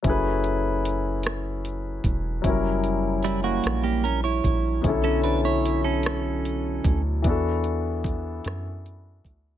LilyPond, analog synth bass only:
\new Staff \with { instrumentName = "Analog synth bass" } { \clef bass \time 6/8 \key fis \minor \tempo 4. = 50 fis,,2~ fis,,8 e,,8 | fis,,4. ais,,4 ais,,8 | b,,2~ b,,8 d,8 | e,4. fis,4 d,8 | }